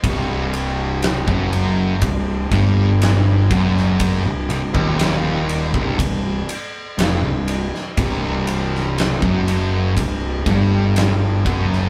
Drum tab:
RD |x-x-x-x-x-x-x-x-|x-x-x-x-x-x-x-x-|x-x-x-x-x-x-x-x-|
SD |----o-------o--o|----o-------o--o|---oo-------o--o|
BD |o----o--o-o---o-|o--o---oo-------|o----o--o-o---o-|